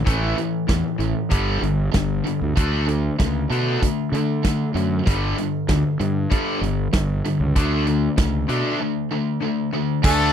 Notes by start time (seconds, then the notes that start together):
0.05 A1 A2 E3 A3, kick, closed hi-hat
0.37 A2 E3, closed hi-hat
0.68 E2 A2 E3, kick, snare, closed hi-hat
0.98 A1 A2 E3, closed hi-hat
1.30 G1 G2 D3 G3, kick, closed hi-hat
1.62 G1 G2 D3, closed hi-hat
1.94 G1 G2 D3, kick, snare, closed hi-hat
2.26 G2 D3, closed hi-hat
2.41 D2
2.56 D2 D3 A3 D4, kick, closed hi-hat
2.88 D3 A3, closed hi-hat
3.19 C#2 D3 A3, kick, snare, closed hi-hat
3.50 B2 D3 A3 D4, closed hi-hat
3.82 D3 A3, kick, closed hi-hat
4.12 D3 A3, closed hi-hat
4.45 D3 A3, kick, snare, closed hi-hat
4.74 F#2 D3 A3, closed hi-hat
5.06 G1 G2 D3 G3, kick, closed hi-hat
5.38 G2 D3, closed hi-hat
5.68 D2 G2 D3, kick, snare, closed hi-hat
6.00 G2 D3, closed hi-hat
6.30 G2 D3 G3, kick, closed hi-hat
6.61 G1 G2 D3, closed hi-hat
6.93 G1 G2 D3, kick, snare, closed hi-hat
7.25 G2 D3, closed hi-hat
7.40 C#2
7.55 D2 D3 A3 D4, kick, closed hi-hat
7.87 D3 A3, closed hi-hat
8.17 C#2 D3 A3, kick, snare, closed hi-hat
8.48 B2 D3 A3 D4, closed hi-hat
8.80 D3 A3
9.11 D3 A3
9.41 D3 A3
9.73 D3 A3
10.03 D2 D3 A3 D4 A4, kick, crash